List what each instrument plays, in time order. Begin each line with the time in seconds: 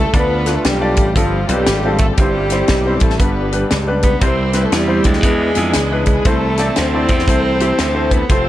Already playing: tenor saxophone A3, string section A4
0.13 slap bass D2, upright piano D3 A3 D4 F4 D5, tenor saxophone B3, string section D4 F4 B4, kick, closed hi-hat
0.46 upright piano A3 D4 F4 B4, snare, closed hi-hat
0.55 tenor saxophone A3, string section A4
0.64 slap bass B1, tenor saxophone G3, string section D4 G4, snare, closed hi-hat
0.81 upright piano A3 D4 F4 D5
0.96 slap bass A1, kick, closed hi-hat
1.15 slap bass G1, upright piano G2 G3 C4 F4 A4, tenor saxophone F3, string section A3 C4 F4, kick, closed hi-hat
1.48 slap bass B1, tenor saxophone G3, upright piano G3 C4 F4 B4, string section C4 D4 G4, closed hi-hat
1.66 slap bass G#1, snare, closed hi-hat
1.85 upright piano G3 C4 F4 A4
1.98 tenor saxophone A3, string section A4, kick, closed hi-hat
2.17 slap bass G1, upright piano G2 G3 C4 E4, tenor saxophone G3, string section C4 E4 G4, kick, closed hi-hat
2.21 upright piano C5
2.50 upright piano G3 C4 E4 C5, snare, closed hi-hat
2.68 slap bass B1, kick, snare, closed hi-hat
2.86 upright piano G3 C4 E4 C5
3.00 slap bass A1, tenor saxophone A3, string section A4, kick, closed hi-hat
3.10 snare
3.19 slap bass G1, upright piano G2 G3 B3 D4 B4, tenor saxophone B3, string section D4 G4 B4, kick, closed hi-hat
3.52 upright piano G3 B3 D4 B4, closed hi-hat
3.71 slap bass C#2, snare, closed hi-hat
3.87 upright piano G3 B3 D4 B4
4.03 tenor saxophone B3, string section B4, kick, closed hi-hat
4.21 slap bass C2, upright piano C3 G3 C4 E4 C5, tonewheel organ G3 C4 E4 C5, tenor saxophone C4, string section E4 G4 C5, kick, closed hi-hat
4.53 upright piano G3 C4 E4 B4, snare, closed hi-hat
4.63 tenor saxophone A3, string section A4
4.72 slap bass E2, tenor saxophone G3, string section C4 E4 G4, snare, closed hi-hat
4.87 upright piano G3 C4 E4 C5
5.04 slap bass D2, tenor saxophone G#3, kick, closed hi-hat
5.13 snare
5.23 slap bass E2, upright piano E3 G#3 D4 E4 B4, tonewheel organ E3 B3 D4 G4, string section B3 D4 G#4, kick, closed hi-hat
5.30 tonewheel organ G#4
5.55 slap bass F2, upright piano G#3 D4 E4 G#4, closed hi-hat
5.73 slap bass C#2, snare, closed hi-hat
5.91 upright piano G#3 D4 E4 B4
6.06 tenor saxophone G#3, kick, closed hi-hat
6.10 string section G#4
6.25 slap bass C2, upright piano C3 A3 C4 E4 C5, tonewheel organ E3 A3 C4 A4, tenor saxophone A3, string section C4 E4 A4, kick, closed hi-hat
6.57 upright piano A3 C4 E4 D5, snare, closed hi-hat
6.76 slap bass D2, tenor saxophone C4, string section E4 A4 C5, snare, closed hi-hat
6.93 upright piano A3 C4 E4 D5
7.08 slap bass E2, kick, closed hi-hat
7.19 snare
7.28 slap bass C2, upright piano A3 C4 E4 C5, kick, closed hi-hat
7.60 upright piano A3 C4 E4 G4, closed hi-hat
7.79 slap bass D2, snare, closed hi-hat
7.95 upright piano A3 C4 E4 C5
8.11 tenor saxophone B3, string section B4, kick, closed hi-hat
8.29 slap bass F1, tonewheel organ F3 A3 C4 A4, upright piano A3 C4 F4 C5, tenor saxophone C4, string section F4 A4 C5, kick, closed hi-hat